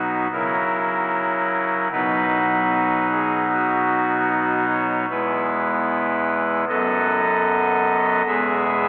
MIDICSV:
0, 0, Header, 1, 2, 480
1, 0, Start_track
1, 0, Key_signature, 5, "major"
1, 0, Tempo, 793651
1, 1159, Time_signature, 4, 2, 24, 8
1, 5373, End_track
2, 0, Start_track
2, 0, Title_t, "Pipe organ"
2, 0, Program_c, 0, 19
2, 0, Note_on_c, 0, 35, 56
2, 0, Note_on_c, 0, 47, 53
2, 0, Note_on_c, 0, 54, 43
2, 0, Note_on_c, 0, 59, 40
2, 0, Note_on_c, 0, 63, 45
2, 0, Note_on_c, 0, 66, 61
2, 165, Note_off_c, 0, 59, 0
2, 165, Note_off_c, 0, 66, 0
2, 166, Note_off_c, 0, 35, 0
2, 166, Note_off_c, 0, 47, 0
2, 166, Note_off_c, 0, 54, 0
2, 166, Note_off_c, 0, 63, 0
2, 193, Note_on_c, 0, 64, 41
2, 193, Note_on_c, 0, 70, 82
2, 194, Note_on_c, 0, 49, 55
2, 194, Note_on_c, 0, 54, 43
2, 1136, Note_off_c, 0, 70, 0
2, 1137, Note_off_c, 0, 49, 0
2, 1137, Note_off_c, 0, 54, 0
2, 1137, Note_off_c, 0, 64, 0
2, 1161, Note_on_c, 0, 71, 88
2, 1162, Note_on_c, 0, 63, 41
2, 1163, Note_on_c, 0, 35, 51
2, 1163, Note_on_c, 0, 54, 46
2, 1163, Note_on_c, 0, 59, 46
2, 1165, Note_on_c, 0, 47, 54
2, 1864, Note_off_c, 0, 71, 0
2, 1882, Note_on_c, 0, 68, 79
2, 2087, Note_off_c, 0, 68, 0
2, 2128, Note_on_c, 0, 66, 67
2, 2591, Note_off_c, 0, 66, 0
2, 2605, Note_on_c, 0, 66, 84
2, 2809, Note_off_c, 0, 66, 0
2, 2839, Note_on_c, 0, 73, 74
2, 3044, Note_off_c, 0, 73, 0
2, 3060, Note_off_c, 0, 35, 0
2, 3060, Note_off_c, 0, 54, 0
2, 3060, Note_off_c, 0, 59, 0
2, 3060, Note_off_c, 0, 63, 0
2, 3061, Note_off_c, 0, 47, 0
2, 3084, Note_on_c, 0, 56, 43
2, 3084, Note_on_c, 0, 59, 48
2, 3085, Note_on_c, 0, 28, 58
2, 3085, Note_on_c, 0, 40, 53
2, 3085, Note_on_c, 0, 64, 45
2, 3085, Note_on_c, 0, 71, 71
2, 4020, Note_off_c, 0, 28, 0
2, 4020, Note_off_c, 0, 40, 0
2, 4020, Note_off_c, 0, 56, 0
2, 4020, Note_off_c, 0, 59, 0
2, 4020, Note_off_c, 0, 64, 0
2, 4020, Note_off_c, 0, 71, 0
2, 4042, Note_on_c, 0, 30, 59
2, 4044, Note_on_c, 0, 42, 55
2, 4044, Note_on_c, 0, 54, 51
2, 4044, Note_on_c, 0, 59, 45
2, 4044, Note_on_c, 0, 69, 48
2, 4045, Note_on_c, 0, 75, 88
2, 4973, Note_off_c, 0, 30, 0
2, 4973, Note_off_c, 0, 42, 0
2, 4973, Note_off_c, 0, 54, 0
2, 4973, Note_off_c, 0, 59, 0
2, 4973, Note_off_c, 0, 69, 0
2, 4974, Note_off_c, 0, 75, 0
2, 4998, Note_on_c, 0, 40, 56
2, 4999, Note_on_c, 0, 28, 55
2, 4999, Note_on_c, 0, 56, 47
2, 4999, Note_on_c, 0, 68, 54
2, 4999, Note_on_c, 0, 76, 94
2, 5001, Note_on_c, 0, 59, 51
2, 5373, Note_off_c, 0, 28, 0
2, 5373, Note_off_c, 0, 40, 0
2, 5373, Note_off_c, 0, 56, 0
2, 5373, Note_off_c, 0, 59, 0
2, 5373, Note_off_c, 0, 68, 0
2, 5373, Note_off_c, 0, 76, 0
2, 5373, End_track
0, 0, End_of_file